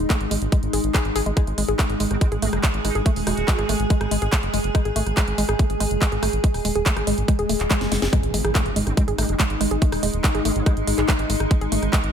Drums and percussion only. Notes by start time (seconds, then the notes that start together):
0.10 kick, clap, closed hi-hat
0.21 closed hi-hat
0.31 open hi-hat
0.42 closed hi-hat
0.52 kick, closed hi-hat
0.63 closed hi-hat
0.73 open hi-hat
0.84 closed hi-hat
0.94 kick, clap, closed hi-hat
1.05 closed hi-hat
1.16 open hi-hat
1.26 closed hi-hat
1.37 kick, cross-stick, closed hi-hat
1.47 closed hi-hat
1.58 open hi-hat
1.68 closed hi-hat
1.79 kick, cross-stick, clap, closed hi-hat
1.90 closed hi-hat
2.00 open hi-hat
2.11 cross-stick, closed hi-hat
2.21 kick, closed hi-hat
2.32 closed hi-hat
2.42 open hi-hat
2.53 cross-stick, closed hi-hat
2.64 kick, clap, closed hi-hat
2.74 closed hi-hat
2.85 cross-stick, open hi-hat
2.95 closed hi-hat
3.06 kick, closed hi-hat
3.16 open hi-hat
3.27 cross-stick, open hi-hat
3.37 closed hi-hat
3.48 kick, clap, closed hi-hat
3.59 cross-stick, closed hi-hat
3.69 open hi-hat
3.80 closed hi-hat
3.90 kick, closed hi-hat
4.01 cross-stick, closed hi-hat
4.11 open hi-hat
4.22 closed hi-hat
4.33 kick, cross-stick, clap, closed hi-hat
4.43 closed hi-hat
4.54 open hi-hat
4.64 closed hi-hat
4.75 kick, cross-stick, closed hi-hat
4.85 closed hi-hat
4.96 open hi-hat
5.07 cross-stick, closed hi-hat
5.17 kick, clap, closed hi-hat
5.28 closed hi-hat
5.38 open hi-hat
5.49 cross-stick, closed hi-hat
5.59 kick, closed hi-hat
5.70 closed hi-hat
5.80 cross-stick, open hi-hat
5.91 closed hi-hat
6.02 kick, clap, closed hi-hat
6.12 closed hi-hat
6.23 cross-stick, open hi-hat
6.33 closed hi-hat
6.44 kick, closed hi-hat
6.54 cross-stick, open hi-hat
6.65 open hi-hat
6.75 closed hi-hat
6.86 kick, clap, closed hi-hat
6.97 cross-stick, closed hi-hat
7.07 open hi-hat
7.18 closed hi-hat
7.28 kick, cross-stick, closed hi-hat
7.39 closed hi-hat
7.49 open hi-hat
7.60 clap, closed hi-hat
7.71 kick, cross-stick, clap, closed hi-hat
7.81 snare, closed hi-hat
7.92 snare, open hi-hat
8.02 snare, closed hi-hat
8.13 kick, cross-stick, closed hi-hat
8.23 closed hi-hat
8.34 open hi-hat
8.45 cross-stick, closed hi-hat
8.55 kick, clap, closed hi-hat
8.66 closed hi-hat
8.76 open hi-hat
8.87 cross-stick, closed hi-hat
8.97 kick, closed hi-hat
9.08 closed hi-hat
9.18 cross-stick, open hi-hat
9.29 closed hi-hat
9.40 kick, clap, closed hi-hat
9.50 closed hi-hat
9.61 cross-stick, open hi-hat
9.71 closed hi-hat
9.82 kick, closed hi-hat
9.92 cross-stick, open hi-hat
10.03 open hi-hat
10.14 closed hi-hat
10.24 kick, clap, closed hi-hat
10.35 cross-stick, closed hi-hat
10.45 open hi-hat
10.56 closed hi-hat
10.66 kick, cross-stick, closed hi-hat
10.77 closed hi-hat
10.87 open hi-hat
10.98 clap, closed hi-hat
11.09 kick, cross-stick, clap, closed hi-hat
11.19 closed hi-hat
11.30 open hi-hat
11.40 cross-stick
11.51 kick, closed hi-hat
11.61 closed hi-hat
11.72 open hi-hat
11.83 cross-stick, closed hi-hat
11.93 kick, clap, closed hi-hat
12.04 closed hi-hat